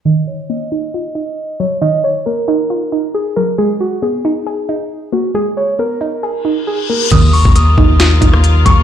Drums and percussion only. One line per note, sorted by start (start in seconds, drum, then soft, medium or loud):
7.11 kick loud
7.11 closed hi-hat medium
7.11 crash loud
7.33 open hi-hat medium
7.45 kick medium
7.56 closed hi-hat medium
7.78 kick loud
8.00 cross-stick medium
8.00 snare loud
8.00 clap loud
8.00 closed hi-hat medium
8.22 kick medium
8.22 closed hi-hat medium
8.33 cross-stick loud
8.44 closed hi-hat medium
8.66 kick loud
8.66 closed hi-hat medium